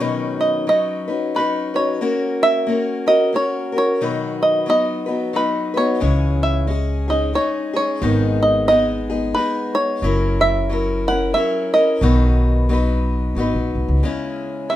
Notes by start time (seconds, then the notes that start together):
Already playing: C#5
0.00 B2 D#3 F#3 C#4 D#4 B4
0.41 D#5
0.67 F#3 C#4 D#4 B4 D#5
1.08 F#3 C#4 D#4 B4
1.35 F#3 C#4 D#4 B4
1.74 F#3 C#4 D#4 B4 C#5
2.01 A#3 C#4 F#4 A#4
2.43 E5
2.67 A#3 C#4 F#4 A#4
3.06 C#4 F#4 A#4 D#5
3.33 A#3 C#4 F#4 A#4 C#5
3.72 C#4 F#4 A#4
3.78 C#5
4.01 B2 D#3 F#3 B3 D#4 B4
4.43 D#5
4.66 F#3 B3 D#4 B4 D#5
5.06 F#3 B3 D#4 B4
5.33 F#3 B3 D#4 B4
5.74 F#3 B3 D#4 B4 C#5
6.00 C#2 C#3 E3 G#3 C#4 G#4
6.43 E5
6.67 G#3 C#4 G#4
7.08 G#3 C#4 D#4 G#4 D#5
7.34 G#3 C#4 D#4 G#4 C#5
7.73 G#3 C#4 D#4 G#4 C#5
8.02 G#1 G#2 D#3 G#3 B3 D#4 G#4
8.43 D#5
8.68 G#3 B3 D#4 G#4 D#5
9.10 G#3 B3 D#4 G#4
9.35 G#3 B3 D#4 B4
9.39 G#4
9.75 C#5
10.02 F#1 F#3 C#4 E4 A#4
10.41 E5
10.69 F#3 C#4 E4 A#4
11.08 C#4 E4 A#4 F#5
11.34 F#3 C#4 E4 A#4 E5
11.74 E4 A#4 D#5
11.78 C#4
12.01 B1 B2 D#3 F#3 B3 D#4 B4
12.69 F#3 B3 D#4 B4
13.35 G#1 F#3 B3 D#4
13.40 B4
13.54 A#1
13.75 B1
13.88 C#2
14.03 C#3 G#3 C#4 E4 G#4
14.70 G#3 C#4 E4 E5